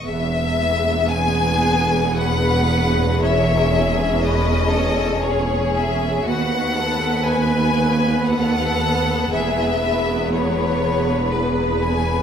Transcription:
<<
  \new Staff \with { instrumentName = "Violin section" } { \time 3/4 \key e \major \tempo 4 = 59 e''4 gis''4 fis''4 | e''4 dis''4 cis''8 e''8 | fis''4 gis''4 fis''4 | e''4 cis''4 b'8 gis''8 | }
  \new Staff \with { instrumentName = "Violin section" } { \time 3/4 \key e \major r4 gis'4 b'4 | cis''8 gis'8 b'8 a'8 gis'4 | fis'8 a'8 b'4 a'4 | gis'8 b'2~ b'8 | }
  \new Staff \with { instrumentName = "Viola section" } { \time 3/4 \key e \major << { gis'2.~ | gis'2. | b'2. | gis'2. | } \\ { b2. | cis'2. | b2.~ | b2. | } >> }
  \new Staff \with { instrumentName = "Cello section" } { \clef bass \time 3/4 \key e \major e,2.~ | e,2. | dis,2. | e,2. | }
  \new Staff \with { instrumentName = "Double bass section" } { \clef bass \time 3/4 \key e \major e,,2.~ | e,,2. | dis,2. | e,,2. | }
>>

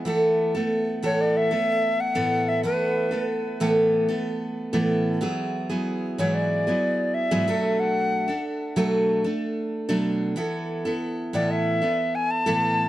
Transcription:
<<
  \new Staff \with { instrumentName = "Recorder" } { \time 4/4 \key b \dorian \tempo 4 = 93 r4. cis''16 d''16 e''4 fis''8. e''16 | b'4 r2. | r4. cis''16 d''4~ d''16 e''4 | fis''4 r2. |
r4. d''16 e''4 gis''16 a''4 | }
  \new Staff \with { instrumentName = "Steel-string acoustic guitar" } { \time 4/4 \key b \dorian <e a b a'>8. <a b a'>8. <a, e a b a'>8. <a b a'>4 <a, e a b a'>8. | <e a b a'>8. <a b a'>8. <a, e a b a'>8. <a b a'>4 <a, e a b a'>8. | <fis b e' gis'>8. <fis b e' gis'>8. <gis, e fis b e' gis'>8. <fis b e' gis'>4 <gis, e fis b e' gis'>16 <b, fis a d' a'>8~ | <b, fis a d' a'>8. <a d' a'>8. <b, fis a d' a'>8. <a d' a'>4 <b, fis a d' a'>8. |
<e b e' a'>8. <b e' a'>8. <a, e b e' a'>8. <b e' a'>4 <a, e b e' a'>8. | }
>>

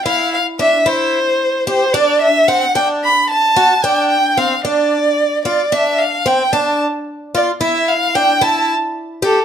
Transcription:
<<
  \new Staff \with { instrumentName = "Violin" } { \time 7/8 \key d \dorian \tempo 4 = 111 f''8 f''8 e''8 c''4. c''8 | d''8 e''8 fis''8 g''8 b''8 a''4 | g''8 g''8 f''8 d''4. d''8 | e''8 f''8 g''8 a''8 r4 d''8 |
e''8 f''8 g''8 a''8 r4 a'8 | }
  \new Staff \with { instrumentName = "Twelve-string acoustic guitar" } { \time 7/8 \key d \dorian e'4 d'8 e'4 r8 g'8 | d'4 c'8 d'4 r8 fis'8 | d'4 c'8 d'4 r8 f'8 | d'4 c'8 d'4 r8 f'8 |
e'4 d'8 e'4 r8 g'8 | }
>>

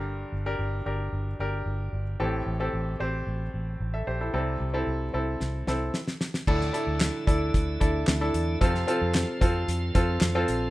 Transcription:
<<
  \new Staff \with { instrumentName = "Upright piano" } { \time 4/4 \key d \minor \tempo 4 = 112 << { r1 | r2. r16 <a' e''>16 <g' c''>16 <e' a'>16~ | <e' a'>16 r2. r8. | r1 |
r1 | } \\ { <d' g' bes'>8 r16 <d' g' bes'>8 r16 <d' g' bes'>8. r16 <d' g' bes'>4~ <d' g' bes'>16 r16 | <c' g' a'>8 r16 <c' g' a'>8 r16 <c' g' c''>8. r4. r16 | <c' e' a'>8 r16 <c' e' a'>8 r16 <c' e' a'>8. r16 <c' e' a'>8 r4 | <d' e' a'>8 <d' e' a'>8. r16 <d' e' a'>8. r16 <d' e' a'>8 r16 <d' e' a'>8 r16 |
<c' f' a'>8 <c' f' a'>8. r16 <c' f' a'>8. r16 <c' f' a'>8 r16 <c' f' a'>8 r16 | } >> }
  \new Staff \with { instrumentName = "Upright piano" } { \clef bass \time 4/4 \key d \minor <g, d>4 r2. | <a, e>4. r2 r8 | <c g>4. r2 r8 | a,4. r2 r8 |
c4. r2 r8 | }
  \new Staff \with { instrumentName = "Tonewheel organ" } { \time 4/4 \key d \minor r1 | r1 | r1 | <d a e'>1 |
<f c' a'>1 | }
  \new Staff \with { instrumentName = "Fingered electric bass" } { \clef bass \time 4/4 \key d \minor g,,8 g,,8 g,,8 g,,8 g,,8 g,,8 g,,8 g,,8 | a,,8 a,,8 a,,8 a,,8 a,,8 a,,8 a,,8 bes,,8 | c,8 c,8 c,8 c,8 c,8 c,8 r4 | d,8 r16 d,8 r16 d,8 d,8 d,8 d,8 e,8 |
f,8 r16 f,8 r16 f,8 f,8 f,8 f,8 bes,,8 | }
  \new DrumStaff \with { instrumentName = "Drums" } \drummode { \time 4/4 r4 r4 r4 r4 | r4 r4 r4 r4 | r4 r4 sn8 sn8 sn16 sn16 sn16 sn16 | <cymc bd>16 sn16 hh8 <hc hh sn>8 <hh bd>8 <hh bd>8 <hh bd>8 <hc hh sn>8 hh8 |
<hh bd>16 sn16 hh8 <hc hh sn>8 <hh bd>8 hh8 <hh bd>8 <hc hh sn>8 hh8 | }
>>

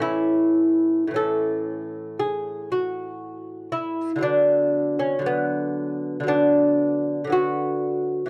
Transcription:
<<
  \new Staff \with { instrumentName = "Lute" } { \time 4/4 \key a \major \tempo 4 = 58 e'4 a'4 gis'8 fis'4 e'8 | d'8. cis'16 b4 d'4 fis'4 | }
  \new Staff \with { instrumentName = "Lute" } { \clef bass \time 4/4 \key a \major <a, e cis'>4 <a, e cis'>2. | <d fis b>4 <d fis>4 <d fis b>4 <d fis b>4 | }
>>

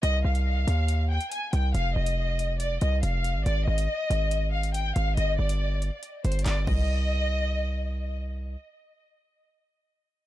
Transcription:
<<
  \new Staff \with { instrumentName = "Violin section" } { \time 4/4 \key c \minor \tempo 4 = 140 ees''8 f''2 g''8 aes''8 g''8 | f''8 ees''4. d''8 ees''8 f''4 | d''8 ees''2 f''8 g''8 f''8 | ees''8 d''4. r8 c''8 d''8 ees''8~ |
ees''2. r4 | r1 | }
  \new Staff \with { instrumentName = "808-style bass" } { \clef bass \time 4/4 \key c \minor c,8 c,4 ees,4~ ees,16 r8. c,8 | f,,8 f,,2 c,8 f,,8. aes,,16 | aes,,8 aes,,8 r8 aes,,2 aes,,8 | g,,8 g,,4~ g,,16 r8. g,,8 g,,8 c,8~ |
c,1 | r1 | }
  \new DrumStaff \with { instrumentName = "Drums" } \drummode { \time 4/4 hh8. hh16 r8 hh8 hh8. hh16 hh8 hh8 | hh8. hh16 r8 hh8 hh8 hh8 hh8 hh8 | hh8. hh16 r8 hh8 hh8. hh16 hh8 hh8 | hh8. hh16 r8 hh8 \tuplet 3/2 { hh16 r16 r16 hh16 hh16 hh16 } <hc hh>8 <cymc bd>8 |
r4 r4 r4 r4 | r4 r4 r4 r4 | }
>>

